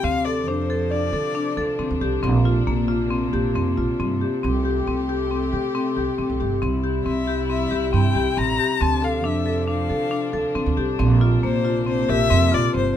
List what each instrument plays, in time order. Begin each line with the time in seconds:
Already playing: string section C3
0.03 upright bass D2, string section F3 D4, marimba C4, violin F5
0.25 marimba A4, violin D5
0.47 upright bass F2, marimba D4, violin C5
0.70 marimba A4
0.90 marimba D4, celesta D5, violin D5
1.13 upright bass D3, marimba A4
1.35 marimba D4
1.57 upright bass D2, marimba A4
1.79 upright bass D3, marimba C4
1.90 upright bass D2
2.01 upright bass C2, marimba G4
2.23 upright bass A#1, string section A#3, marimba C4
2.45 marimba F4
2.67 upright bass A#1, marimba A#3
2.88 marimba F4
3.11 marimba C4
3.33 upright bass A#1, marimba G4
3.55 upright bass F2, marimba C4
3.78 upright bass A#1, marimba F4
4.00 upright bass G2, marimba C4
4.21 marimba G4
4.43 upright bass C2, string section A3 G4, marimba C4
4.65 marimba G4
4.87 upright bass C2, marimba C4
5.09 marimba G4
5.31 marimba C4
5.53 upright bass C3, marimba G4
5.75 marimba C4
5.97 upright bass C2, marimba G4
6.18 upright bass C3, marimba C4
6.30 upright bass C2
6.40 upright bass G1, marimba G4
6.62 upright bass C2, string section G3 E4, marimba C4
6.84 marimba G4
7.05 upright bass C2, marimba C4, violin E5
7.28 marimba G4
7.50 marimba C4, violin E5
7.71 upright bass C2, marimba G4
7.93 upright bass G2, marimba C4, violin G5
8.15 upright bass C2, marimba G4
8.37 upright bass A1, marimba C4, violin A#5
8.59 marimba G4
8.81 upright bass D2, string section F3 D4, marimba C4, violin A5
9.02 marimba A4, violin F5
9.24 upright bass F2, marimba D4, violin E5
9.46 marimba A4
9.68 marimba D4, violin F5
9.90 upright bass D3, marimba A4
10.11 marimba D4
10.33 upright bass D2, marimba A4
10.55 upright bass D3, marimba C4
10.66 upright bass D2
10.77 upright bass C2, marimba G4
10.99 upright bass A#1, string section C3 A#3, marimba C4
11.21 marimba F4
11.43 upright bass A#1, marimba A#3, violin C5
11.65 marimba F4
11.86 marimba C4, violin C5
12.09 upright bass A#1, marimba G4, celesta A#4, violin E5
12.30 upright bass F2, marimba C4
12.52 upright bass A#1, marimba F4, violin D5
12.74 upright bass G1, marimba C4, violin C5